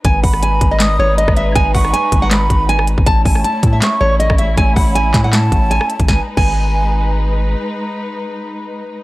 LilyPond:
<<
  \new Staff \with { instrumentName = "Flute" } { \time 4/4 \key gis \phrygian \tempo 4 = 159 r8 b''4. dis'''4 r4 | r8 cis'''4. b''4 r4 | r8 a''4. cis'''4 r4 | r8 b''4. a''2 |
gis''16 r8 gis''2~ gis''16 r4 | r1 | }
  \new Staff \with { instrumentName = "Nylon-string guitar" } { \time 4/4 \key gis \phrygian gis''8 fis''8 gis''8. dis''8. cis''8 dis''8 e''8 | gis''8 fis''8 gis''8. fis''4~ fis''16 gis''8 r8 | a''8 gis''8 a''8. e''8. cis''8 dis''8 e''8 | gis''8 fis''8 gis''8. fis''4~ fis''16 gis''8 r8 |
gis''16 r8 gis''2~ gis''16 r4 | r1 | }
  \new Staff \with { instrumentName = "String section" } { \time 4/4 \key gis \phrygian <gis dis' b'>1~ | <gis dis' b'>1 | <a cis' e'>1~ | <a cis' e'>1 |
<gis dis' b'>1~ | <gis dis' b'>1 | }
  \new Staff \with { instrumentName = "808-style bass" } { \clef bass \time 4/4 \key gis \phrygian gis,,8 gis,,4 gis,,4 gis,,8. gis,,8. | gis,,8 gis,,8 r8 gis,,4 gis,,4~ gis,,16 gis,,16 | a,,8 a,,8 r8 a,8 r8 a,,8. a,,8. | a,,8 a,,4 a,4 a,,8. r8 a,,16 |
gis,,16 r8 gis,,2.~ gis,,16 | r1 | }
  \new DrumStaff \with { instrumentName = "Drums" } \drummode { \time 4/4 <hh bd>8 <hho bd>16 ss16 hh8 <hh bd>8 <hc hh sn>4 hh16 <bd ss>16 hh8 | <hh bd>8 <hho bd>16 ss16 hh8 <hh bd>8 <hc hh sn>8 <hh bd>8 hh16 ss16 hh16 bd16 | <hh bd>8 <hho bd>16 ss16 hh8 <hh bd>8 <hc hh sn>4 hh16 <bd ss>16 hh8 | <hh bd>8 <hho bd>8 hh8 <hc hh bd sn>8 <hc hh sn>8 <hh bd>8 hh16 ss16 hh16 <hh bd>16 |
<bd sn>8. <cymc bd>16 r4 r4 r4 | r4 r4 r4 r4 | }
>>